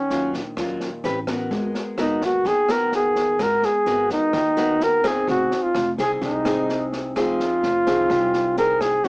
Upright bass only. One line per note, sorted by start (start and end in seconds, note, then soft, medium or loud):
0.10 0.32 D#2 medium
0.34 0.55 A#1 medium
0.57 1.01 D#2 medium
1.04 1.48 A1 medium
1.51 1.73 G#1 medium
1.98 2.20 G#1 medium
2.21 2.43 D#2 medium
2.45 3.35 D#2 medium
3.39 3.61 G#1 medium
3.86 4.08 G#1 medium
4.10 4.32 D#2 medium
4.33 5.24 D#2 medium
5.28 5.50 F1 medium
5.75 5.97 F1 medium
5.98 6.20 C2 medium
6.21 7.12 C2 medium
7.16 7.38 F1 medium
7.63 7.85 F1 medium
7.87 8.08 C2 medium
8.10 9.00 C2 medium
9.04 9.08 D#2 medium